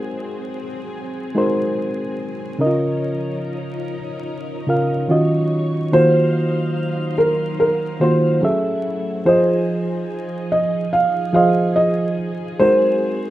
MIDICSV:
0, 0, Header, 1, 4, 480
1, 0, Start_track
1, 0, Tempo, 833333
1, 1492, Time_signature, 4, 2, 24, 8
1, 7661, End_track
2, 0, Start_track
2, 0, Title_t, "Felt piano"
2, 0, Program_c, 0, 0
2, 3417, Note_on_c, 0, 72, 94
2, 4112, Note_off_c, 0, 72, 0
2, 4135, Note_on_c, 0, 70, 78
2, 4351, Note_off_c, 0, 70, 0
2, 4376, Note_on_c, 0, 70, 77
2, 4591, Note_off_c, 0, 70, 0
2, 4614, Note_on_c, 0, 72, 82
2, 4830, Note_off_c, 0, 72, 0
2, 5334, Note_on_c, 0, 72, 82
2, 6030, Note_off_c, 0, 72, 0
2, 6058, Note_on_c, 0, 75, 79
2, 6272, Note_off_c, 0, 75, 0
2, 6294, Note_on_c, 0, 77, 84
2, 6510, Note_off_c, 0, 77, 0
2, 6534, Note_on_c, 0, 77, 82
2, 6773, Note_off_c, 0, 77, 0
2, 6773, Note_on_c, 0, 75, 83
2, 6989, Note_off_c, 0, 75, 0
2, 7254, Note_on_c, 0, 72, 95
2, 7661, Note_off_c, 0, 72, 0
2, 7661, End_track
3, 0, Start_track
3, 0, Title_t, "Reed electric piano"
3, 0, Program_c, 1, 4
3, 0, Control_c, 1, 64, 127
3, 0, Note_on_c, 1, 56, 65
3, 0, Note_on_c, 1, 63, 69
3, 0, Note_on_c, 1, 66, 63
3, 0, Note_on_c, 1, 70, 64
3, 0, Note_on_c, 1, 72, 81
3, 348, Note_off_c, 1, 56, 0
3, 351, Note_off_c, 1, 63, 0
3, 352, Note_off_c, 1, 66, 0
3, 354, Note_off_c, 1, 70, 0
3, 357, Note_off_c, 1, 72, 0
3, 776, Note_on_c, 1, 56, 72
3, 780, Note_on_c, 1, 63, 64
3, 785, Note_on_c, 1, 66, 58
3, 790, Note_on_c, 1, 70, 63
3, 795, Note_on_c, 1, 72, 87
3, 1372, Note_off_c, 1, 56, 0
3, 1374, Note_off_c, 1, 63, 0
3, 1376, Note_off_c, 1, 66, 0
3, 1379, Note_off_c, 1, 70, 0
3, 1381, Note_off_c, 1, 72, 0
3, 1489, Note_on_c, 1, 49, 68
3, 1493, Note_on_c, 1, 61, 67
3, 1496, Note_on_c, 1, 63, 49
3, 1501, Control_c, 1, 64, 0
3, 1501, Note_on_c, 1, 70, 62
3, 1505, Note_on_c, 1, 75, 78
3, 1532, Note_on_c, 1, 65, 58
3, 1539, Note_off_c, 1, 63, 0
3, 1600, Control_c, 1, 64, 127
3, 2272, Note_off_c, 1, 49, 0
3, 2274, Note_off_c, 1, 61, 0
3, 2278, Note_off_c, 1, 70, 0
3, 2280, Note_off_c, 1, 75, 0
3, 2294, Note_off_c, 1, 65, 0
3, 2689, Note_on_c, 1, 49, 69
3, 2692, Note_on_c, 1, 61, 57
3, 2699, Note_on_c, 1, 65, 65
3, 2701, Note_on_c, 1, 70, 61
3, 2706, Note_on_c, 1, 77, 81
3, 2925, Note_off_c, 1, 61, 0
3, 2927, Note_on_c, 1, 51, 74
3, 2930, Note_off_c, 1, 49, 0
3, 2931, Note_off_c, 1, 65, 0
3, 2932, Note_on_c, 1, 61, 68
3, 2937, Note_off_c, 1, 70, 0
3, 2938, Note_on_c, 1, 65, 64
3, 2939, Note_off_c, 1, 77, 0
3, 2940, Control_c, 1, 64, 0
3, 2941, Note_on_c, 1, 66, 65
3, 2945, Note_on_c, 1, 75, 80
3, 3057, Control_c, 1, 64, 127
3, 3333, Note_off_c, 1, 51, 0
3, 3336, Note_off_c, 1, 61, 0
3, 3339, Note_off_c, 1, 65, 0
3, 3341, Note_off_c, 1, 66, 0
3, 3342, Note_off_c, 1, 75, 0
3, 3412, Note_on_c, 1, 51, 67
3, 3415, Note_on_c, 1, 58, 66
3, 3419, Note_on_c, 1, 65, 65
3, 3420, Control_c, 1, 64, 0
3, 3425, Note_on_c, 1, 66, 67
3, 3430, Note_on_c, 1, 72, 74
3, 3505, Control_c, 1, 64, 127
3, 4194, Note_off_c, 1, 51, 0
3, 4195, Note_off_c, 1, 58, 0
3, 4197, Note_off_c, 1, 65, 0
3, 4200, Note_off_c, 1, 66, 0
3, 4203, Note_off_c, 1, 72, 0
3, 4609, Note_on_c, 1, 51, 68
3, 4615, Note_on_c, 1, 58, 65
3, 4617, Note_on_c, 1, 65, 68
3, 4622, Note_on_c, 1, 66, 65
3, 4628, Note_on_c, 1, 72, 81
3, 4847, Note_on_c, 1, 54, 78
3, 4851, Note_off_c, 1, 51, 0
3, 4852, Note_on_c, 1, 61, 65
3, 4854, Note_off_c, 1, 58, 0
3, 4855, Note_off_c, 1, 65, 0
3, 4855, Note_on_c, 1, 68, 63
3, 4857, Note_off_c, 1, 66, 0
3, 4860, Note_off_c, 1, 72, 0
3, 4860, Control_c, 1, 64, 0
3, 4860, Note_on_c, 1, 69, 67
3, 4865, Note_on_c, 1, 76, 83
3, 4969, Control_c, 1, 64, 127
3, 5253, Note_off_c, 1, 54, 0
3, 5256, Note_off_c, 1, 61, 0
3, 5257, Note_off_c, 1, 68, 0
3, 5260, Note_off_c, 1, 69, 0
3, 5262, Note_off_c, 1, 76, 0
3, 5330, Note_on_c, 1, 53, 75
3, 5336, Note_on_c, 1, 65, 63
3, 5337, Note_on_c, 1, 68, 66
3, 5340, Control_c, 1, 64, 0
3, 5343, Note_on_c, 1, 72, 63
3, 5349, Note_on_c, 1, 75, 74
3, 5434, Control_c, 1, 64, 127
3, 6113, Note_off_c, 1, 53, 0
3, 6116, Note_off_c, 1, 65, 0
3, 6117, Note_off_c, 1, 68, 0
3, 6119, Note_off_c, 1, 72, 0
3, 6122, Note_off_c, 1, 75, 0
3, 6526, Note_on_c, 1, 53, 71
3, 6530, Note_on_c, 1, 65, 67
3, 6535, Note_on_c, 1, 68, 61
3, 6540, Note_on_c, 1, 72, 67
3, 6543, Note_on_c, 1, 75, 83
3, 7127, Note_off_c, 1, 53, 0
3, 7129, Note_off_c, 1, 65, 0
3, 7131, Note_off_c, 1, 68, 0
3, 7134, Note_off_c, 1, 72, 0
3, 7135, Note_off_c, 1, 75, 0
3, 7256, Note_on_c, 1, 56, 69
3, 7259, Control_c, 1, 64, 0
3, 7261, Note_on_c, 1, 63, 65
3, 7264, Note_on_c, 1, 66, 66
3, 7269, Note_on_c, 1, 70, 64
3, 7273, Note_on_c, 1, 72, 89
3, 7359, Control_c, 1, 64, 127
3, 7661, Note_off_c, 1, 56, 0
3, 7661, Note_off_c, 1, 63, 0
3, 7661, Note_off_c, 1, 66, 0
3, 7661, Note_off_c, 1, 70, 0
3, 7661, Note_off_c, 1, 72, 0
3, 7661, End_track
4, 0, Start_track
4, 0, Title_t, "String machine"
4, 0, Program_c, 2, 50
4, 0, Note_on_c, 2, 54, 73
4, 0, Note_on_c, 2, 60, 72
4, 0, Note_on_c, 2, 68, 79
4, 1471, Note_off_c, 2, 54, 0
4, 1471, Note_off_c, 2, 60, 0
4, 1471, Note_off_c, 2, 68, 0
4, 1492, Note_on_c, 2, 53, 76
4, 1492, Note_on_c, 2, 70, 84
4, 1493, Note_on_c, 2, 61, 64
4, 1493, Note_on_c, 2, 63, 72
4, 2917, Note_off_c, 2, 53, 0
4, 2918, Note_off_c, 2, 61, 0
4, 2918, Note_off_c, 2, 70, 0
4, 2932, Note_on_c, 2, 54, 72
4, 2935, Note_on_c, 2, 73, 82
4, 3393, Note_off_c, 2, 63, 0
4, 3406, Note_off_c, 2, 54, 0
4, 3409, Note_off_c, 2, 73, 0
4, 3412, Note_on_c, 2, 72, 86
4, 3413, Note_on_c, 2, 54, 79
4, 3413, Note_on_c, 2, 77, 69
4, 3415, Note_on_c, 2, 63, 70
4, 4838, Note_off_c, 2, 72, 0
4, 4838, Note_off_c, 2, 77, 0
4, 4839, Note_off_c, 2, 63, 0
4, 4848, Note_on_c, 2, 57, 77
4, 4849, Note_on_c, 2, 64, 68
4, 5313, Note_off_c, 2, 54, 0
4, 5325, Note_off_c, 2, 57, 0
4, 5326, Note_off_c, 2, 64, 0
4, 5335, Note_on_c, 2, 63, 67
4, 5335, Note_on_c, 2, 68, 84
4, 5337, Note_on_c, 2, 53, 77
4, 7234, Note_off_c, 2, 63, 0
4, 7235, Note_off_c, 2, 53, 0
4, 7252, Note_on_c, 2, 54, 77
4, 7253, Note_on_c, 2, 60, 72
4, 7661, Note_off_c, 2, 54, 0
4, 7661, Note_off_c, 2, 60, 0
4, 7661, Note_off_c, 2, 68, 0
4, 7661, End_track
0, 0, End_of_file